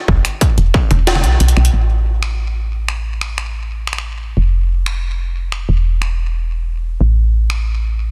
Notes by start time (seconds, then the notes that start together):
0.08 F1, kick
0.25 finger snap, closed hi-hat
0.41 kick, closed hi-hat
0.58 E1, closed hi-hat
0.74 finger snap, kick
0.91 E1, closed hi-hat, mid tom
1.07 snare, closed hi-hat
1.16 mid tom
1.24 B1, closed hi-hat
1.40 B1, closed hi-hat
1.48 closed hi-hat
1.57 B1, finger snap
1.65 closed hi-hat
1.73 A1
2.23 finger snap
2.88 finger snap
3.21 finger snap
3.38 finger snap
3.87 finger snap
3.93 finger snap
3.98 finger snap
4.37 F1
4.86 finger snap
5.52 finger snap
5.69 E1
6.02 finger snap
7.01 A1
7.50 finger snap